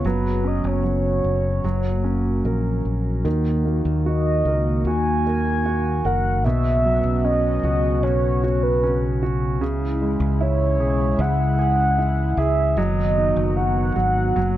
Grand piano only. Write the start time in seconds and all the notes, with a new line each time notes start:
0.06 F#3
0.44 C#4
0.84 F#3
1.64 F#3
2.04 C#4
2.45 A#4
3.25 D#3
3.65 A#3
4.06 F#4
4.47 A#4
4.87 F#4
5.26 A#4
5.66 F#4
6.05 A#4
6.46 B2
6.85 F#3
7.25 C#4
7.64 F#4
8.04 C#4
8.43 F#4
8.84 C#4
9.23 F#4
9.61 C#3
10.02 G#3
10.41 E4
10.80 G#4
11.20 E4
11.59 G#4
11.98 E4
12.38 G#4
12.78 F#3
13.18 D#4
13.57 F#4
13.96 F#3
14.36 F#3